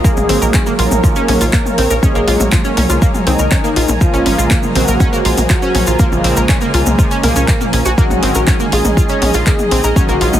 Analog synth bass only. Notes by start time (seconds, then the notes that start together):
0.17 A#1
0.29 G#1
0.42 A#1
0.79 A#1
0.91 A#1
1.28 A#1
1.41 A#1
1.78 A#1
1.90 A#1
2.15 A#1
2.28 A#1
2.40 A#1
2.77 C2
2.90 C2
3.27 C2
3.39 C2
3.76 A#1
3.89 A#1
4.14 A#1
4.26 G#1
4.38 A#1
4.76 A#1
4.88 A#1
5.25 A#1
5.38 A#1
5.75 A#1
5.87 A#1
6.12 A#1
6.24 A#1
6.37 A#1
6.74 C2
6.86 C2
7.23 C2
7.36 C2
7.73 A#1
7.86 A#1
8.10 A#1
8.23 G#1
8.35 A#1
8.72 A#1
8.85 A#1
9.22 A#1
9.34 A#1
9.71 A#1
9.84 A#1
10.09 A#1
10.21 A#1
10.33 A#1